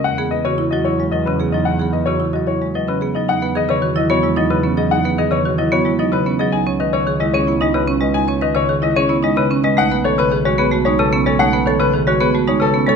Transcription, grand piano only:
X:1
M:3/4
L:1/16
Q:1/4=111
K:C#m
V:1 name="Grand piano"
f z d c z d c z d B z d | f z d c z d c z d B z d | f z d c z d c z d B z d | f z d c z d c z d B z d |
g z d c z d c z d B z d | g z d c z d c z d B z d | f z c B z c B z c A z c | f z c B z c B z c A z c |]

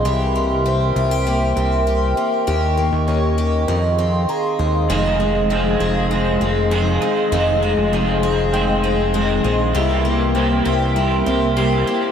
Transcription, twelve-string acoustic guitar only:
X:1
M:4/4
L:1/16
Q:1/4=99
K:Fm
V:1 name="Twelve-string acoustic guitar"
[=E,G]2 B,2 C2 F G B,2 C2 G2 B,2 | [B,G]2 B,2 D2 G2 E,2 C2 A2 A,2 | [E,A]2 A,2 C2 A2 A,2 C2 A2 A,2 | [E,A]2 A,2 C2 A2 A,2 C2 A2 A,2 |
[=E,G]2 B,2 C2 G2 B,2 C2 G2 B,2 |]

